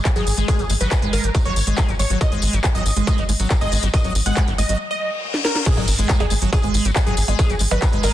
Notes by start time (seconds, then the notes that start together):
0.05 G#3, kick, clap, closed hi-hat, tambourine
0.16 G#1 F#3 G#4, closed hi-hat, tambourine
0.27 G#1, open hi-hat, tambourine
0.38 G#1 G#3, closed hi-hat, tambourine
0.48 G#4, kick, closed hi-hat, tambourine
0.59 G#1 F#3, closed hi-hat, tambourine
0.69 G#1 G#3, open hi-hat, tambourine
0.80 G#1 F#3 B4, closed hi-hat, tambourine
0.91 kick, clap, closed hi-hat, tambourine
1.02 G#1 G#3, closed hi-hat, tambourine
1.13 G#1 A#4, open hi-hat, tambourine
1.24 G#1 F#3, closed hi-hat, tambourine
1.34 G#3, kick, closed hi-hat, tambourine
1.45 G#1 F#3 C#5, closed hi-hat, tambourine
1.56 G#1, open hi-hat, tambourine
1.67 G#1 G#3, closed hi-hat, tambourine
1.77 kick, clap, closed hi-hat, tambourine
1.89 G#1 F#3, closed hi-hat, tambourine
1.99 G#1 G#3 C#5, open hi-hat, tambourine
2.10 G#1 F#3, closed hi-hat, tambourine
2.21 D#5, kick, closed hi-hat, tambourine
2.32 G#1 G#3, closed hi-hat, tambourine
2.42 G#1, open hi-hat, tambourine
2.53 G#1 F#3, closed hi-hat, tambourine
2.63 G#3, kick, clap, closed hi-hat, tambourine
2.75 G#1 F#3 D#5, closed hi-hat, tambourine
2.86 G#1, open hi-hat, tambourine
2.96 G#1 G#3, closed hi-hat, tambourine
3.07 D#5, kick, closed hi-hat, tambourine
3.18 G#1 F#3, closed hi-hat, tambourine
3.29 G#1 G#3, open hi-hat, tambourine
3.40 G#1 F#3, closed hi-hat, tambourine
3.50 kick, clap, closed hi-hat, tambourine
3.61 G#1 G#3 D#5, closed hi-hat, tambourine
3.72 G#1, open hi-hat, tambourine
3.83 G#1 F#3, closed hi-hat, tambourine
3.94 G#3 D#5, kick, closed hi-hat, tambourine
4.04 G#1 F#3, closed hi-hat, tambourine
4.15 G#1, open hi-hat, tambourine
4.26 G#1 G#3 F#5, closed hi-hat, tambourine
4.36 kick, clap, closed hi-hat, tambourine
4.48 G#1 F#3, closed hi-hat, tambourine
4.58 G#1 G#3 D#5, open hi-hat, tambourine
4.69 G#1 F#3, closed hi-hat, tambourine
4.80 reverse cymbal
4.91 D#5
5.34 snare
5.45 A#4, snare
5.56 snare
5.66 G#3 G#4, kick, closed hi-hat, tambourine, crash, sub drop
5.77 G#1 F#3, closed hi-hat, tambourine, percussion blips
5.88 G#1, open hi-hat, tambourine
5.98 G#1 G#3, closed hi-hat, tambourine
6.09 kick, clap, closed hi-hat, tambourine
6.20 G#1 F#3 G#4, closed hi-hat, tambourine, percussion blips
6.30 G#1 G#3, open hi-hat, tambourine
6.42 G#1 F#3, closed hi-hat, tambourine
6.53 G#4, kick, closed hi-hat, tambourine, percussion blips
6.62 G#1 G#3, closed hi-hat, tambourine
6.74 G#1, open hi-hat, tambourine
6.85 G#1 F#3, closed hi-hat, tambourine
6.96 G#3, kick, clap, closed hi-hat, tambourine, percussion blips
7.07 G#1 F#3 G#4, closed hi-hat, tambourine
7.17 G#1, open hi-hat, tambourine
7.28 G#1 G#3, closed hi-hat, tambourine, percussion blips
7.39 G#4, kick, closed hi-hat, tambourine
7.49 G#1 F#3, closed hi-hat, tambourine
7.59 G#1 G#3, open hi-hat, tambourine
7.71 G#1 F#3 B4, closed hi-hat, tambourine, percussion blips
7.82 kick, clap, closed hi-hat, tambourine
7.92 G#1 G#3, closed hi-hat, tambourine
8.03 G#1 A#4, open hi-hat, tambourine, percussion blips